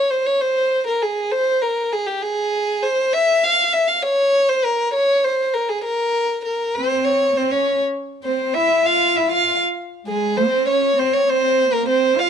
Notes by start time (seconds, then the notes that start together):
Already playing: C#5
0.11 C5
0.27 C#5
0.41 C5
0.87 A#4
1.02 G#4
1.32 C5
1.62 A#4
1.92 G#4
2.07 G4
2.22 G#4
2.82 C5
3.13 E5
3.44 F5
3.73 E5
3.88 F5
4.03 C#5
4.49 C5
4.64 A#4
4.94 C#5
5.24 C5
5.54 A#4
5.69 G#4
5.84 A#4
6.45 A#4
6.75 C4 C5
7.05 C#5
7.34 C4 C5
7.50 C#4 C#5
8.24 C4 C5
8.54 E4 E5
8.85 F4 F5
9.16 E4 E5
9.30 F4 F5
10.06 G#3 G#4
10.36 C4 C5
10.66 C#4 C#5
10.96 C4 C5
11.13 C#5
11.27 C4 C5
11.70 A#3 A#4
11.85 C4 C5
12.16 F4 F5